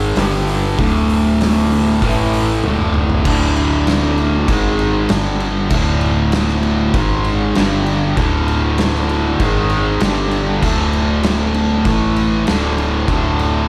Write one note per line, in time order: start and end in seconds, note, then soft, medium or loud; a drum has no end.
0.00 0.12 G#1 loud
0.00 0.16 G#2 medium
0.00 0.16 D#3 loud
0.00 0.17 G#3 loud
0.16 0.74 G1 medium
0.16 0.78 G2 loud
0.16 0.78 D3 loud
0.16 0.79 G3 loud
0.16 snare loud
0.16 open hi-hat loud
0.47 open hi-hat medium
0.79 1.98 D1 medium
0.79 2.02 D2 loud
0.79 2.02 A2 loud
0.79 2.04 D3 loud
0.79 kick loud
0.79 open hi-hat medium
1.10 open hi-hat medium
1.41 snare loud
1.41 open hi-hat medium
1.71 open hi-hat medium
2.02 2.60 A1 loud
2.02 2.63 A2 loud
2.02 2.64 E3 loud
2.02 2.64 A3 loud
2.02 kick loud
2.02 open hi-hat medium
2.33 open hi-hat medium
2.64 3.22 D1 medium
2.64 3.24 D2 loud
2.64 3.24 A2 loud
2.64 3.25 D3 loud
2.64 high tom medium
2.79 mid tom medium
2.94 mid tom loud
3.10 floor tom loud
3.25 4.45 D1 medium
3.25 4.47 D2 loud
3.25 4.48 A2 loud
3.25 4.48 D3 loud
3.25 kick loud
3.25 crash loud
3.25 crash medium
3.56 crash medium
3.87 snare loud
3.87 crash medium
4.18 crash medium
4.48 5.06 G#1 loud
4.48 5.10 G#2 loud
4.48 5.11 D#3 loud
4.48 5.12 G#3 loud
4.48 kick loud
4.48 crash loud
4.79 crash medium
5.09 5.68 G1 loud
5.09 5.71 G2 loud
5.09 5.71 D3 loud
5.09 5.72 G3 loud
5.09 snare loud
5.09 crash loud
5.40 crash medium
5.70 6.90 D1 loud
5.70 6.93 D2 medium
5.70 6.94 A2 loud
5.70 6.94 D3 loud
5.70 kick loud
5.70 crash loud
6.01 crash medium
6.32 snare loud
6.32 crash loud
6.49 snare soft
6.63 crash medium
6.94 7.52 G#1 loud
6.94 7.55 G#2 medium
6.94 7.56 D#3 medium
6.94 7.56 G#3 loud
6.94 kick loud
6.94 crash medium
7.24 crash medium
7.55 8.14 G1 medium
7.55 8.16 G2 loud
7.55 8.17 D3 loud
7.55 8.17 G3 loud
7.55 snare loud
7.55 crash loud
7.86 crash medium
8.16 9.36 D1 medium
8.16 9.40 D2 loud
8.16 9.40 A2 loud
8.16 9.41 D3 loud
8.16 kick loud
8.16 crash medium
8.48 crash medium
8.78 snare loud
8.78 crash medium
8.95 snare soft
9.09 crash medium
9.40 9.97 G#1 loud
9.40 10.00 G#2 loud
9.40 10.01 D#3 loud
9.40 10.01 G#3 loud
9.40 kick loud
9.40 crash medium
9.70 crash medium
10.00 10.59 G1 medium
10.00 10.62 G2 loud
10.00 10.62 D3 loud
10.00 10.63 G3 loud
10.00 snare loud
10.00 crash loud
10.31 crash medium
10.62 11.82 D1 medium
10.62 11.84 D2 loud
10.62 11.84 A2 loud
10.62 11.85 D3 loud
10.62 kick loud
10.62 crash loud
10.93 crash medium
11.23 snare loud
11.23 crash loud
11.54 crash medium
11.85 12.43 A1 loud
11.85 12.46 A2 medium
11.85 12.46 E3 loud
11.85 12.47 A3 loud
11.85 kick loud
11.85 crash loud
12.16 crash medium
12.46 13.05 D1 loud
12.46 13.07 D2 loud
12.46 13.07 A2 loud
12.46 13.08 D3 loud
12.46 snare loud
12.46 crash loud
12.78 crash medium
13.08 13.68 D1 medium
13.08 13.68 D2 loud
13.08 13.68 A2 loud
13.08 13.68 D3 loud
13.08 kick loud
13.08 crash medium
13.39 crash medium